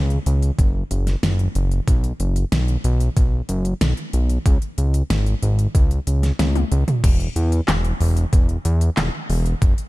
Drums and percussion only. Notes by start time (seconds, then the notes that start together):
0.10 closed hi-hat
0.26 closed hi-hat
0.42 closed hi-hat
0.59 kick, closed hi-hat
0.91 closed hi-hat
1.07 snare, closed hi-hat
1.23 snare, closed hi-hat
1.39 closed hi-hat
1.55 closed hi-hat
1.71 closed hi-hat
1.88 kick, closed hi-hat
2.04 closed hi-hat
2.20 closed hi-hat
2.36 closed hi-hat
2.52 snare, closed hi-hat
2.68 closed hi-hat
2.84 closed hi-hat
3.00 closed hi-hat
3.17 kick, closed hi-hat
3.49 closed hi-hat
3.65 closed hi-hat
3.81 snare, closed hi-hat
3.97 closed hi-hat
4.13 closed hi-hat
4.30 closed hi-hat
4.46 kick, closed hi-hat
4.62 closed hi-hat
4.78 closed hi-hat
4.94 closed hi-hat
5.10 snare, closed hi-hat
5.26 closed hi-hat
5.43 closed hi-hat
5.59 closed hi-hat
5.75 kick, closed hi-hat
5.91 closed hi-hat
6.07 closed hi-hat
6.23 snare, closed hi-hat
6.39 snare, closed hi-hat, high tom
6.55 closed hi-hat, high tom
6.72 closed hi-hat
6.88 closed hi-hat, mid tom
7.04 kick, closed hi-hat, crash
7.20 closed hi-hat
7.36 closed hi-hat
7.52 closed hi-hat
7.68 snare, clap, closed hi-hat
7.85 closed hi-hat
8.01 open hi-hat
8.17 closed hi-hat
8.33 kick, closed hi-hat
8.49 closed hi-hat
8.65 closed hi-hat
8.81 closed hi-hat
8.97 snare, clap, closed hi-hat
9.30 open hi-hat
9.46 closed hi-hat
9.62 kick, closed hi-hat
9.78 closed hi-hat